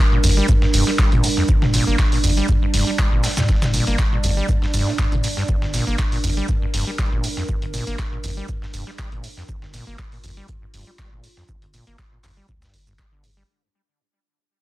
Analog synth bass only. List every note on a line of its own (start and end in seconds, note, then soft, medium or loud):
0.24 0.41 G1 medium
0.49 0.57 G2 medium
0.74 0.82 F1 medium
1.12 1.20 G1 medium
1.49 1.80 G1 loud
1.87 1.95 G1 medium
2.24 2.41 G1 medium
2.49 2.57 G2 medium
2.74 2.82 F1 loud
3.12 3.20 G1 medium
3.49 3.80 G1 loud
3.87 3.95 G1 medium
4.24 4.41 G1 medium
4.49 4.57 G2 medium
4.74 4.82 F1 loud
5.12 5.20 G1 medium
5.49 5.80 G1 loud
5.87 5.95 G1 medium
6.24 6.41 G1 medium
6.49 6.57 G2 medium
6.74 6.82 F1 medium
7.12 7.20 G1 medium
7.49 7.80 G1 loud
7.87 7.95 G1 medium
8.24 8.41 G1 loud
8.49 8.57 G2 medium
8.74 8.82 F1 loud
9.12 9.20 G1 medium
9.49 9.80 G1 loud
9.87 9.95 G1 medium
10.24 10.41 G1 medium
10.49 10.57 G2 medium
10.74 10.82 F1 medium
11.12 11.20 G1 medium
11.49 11.80 G1 loud
11.87 11.95 G1 medium
12.24 12.41 G1 medium
12.49 12.66 D2 medium
12.74 13.05 G1 loud
13.12 13.42 G1 medium